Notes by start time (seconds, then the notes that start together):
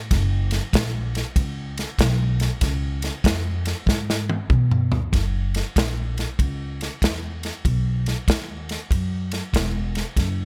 Already playing: A2
0.11 F#1, kick, snare, ride
0.51 snare, ride
0.73 A#1, kick, snare, ride
1.15 snare, ride
1.36 C#2, kick, ride
1.78 snare, ride
1.98 B1, kick, snare, ride
2.40 snare, ride
2.61 C#2, kick, snare, ride
3.02 snare, ride
3.24 F2, kick, snare, ride
3.65 snare, ride
3.86 G#2, kick, snare
4.10 snare
4.29 high tom
4.50 B2, kick, mid tom
4.71 mid tom
4.92 floor tom
5.12 F#1, kick, snare, ride
5.54 snare, ride
5.76 A#1, kick, snare, ride
6.18 snare, ride
6.39 C#2, kick, ride
6.81 snare, ride
7.02 E2, kick, snare, ride
7.43 snare, ride
7.65 B1, kick, ride
8.06 snare, ride
8.28 D#2, kick, snare, ride
8.69 snare, ride
8.91 F#2, kick, ride
9.31 snare, ride
9.53 E1, kick, snare, ride
9.95 snare, ride
10.16 F#1, kick, snare, ride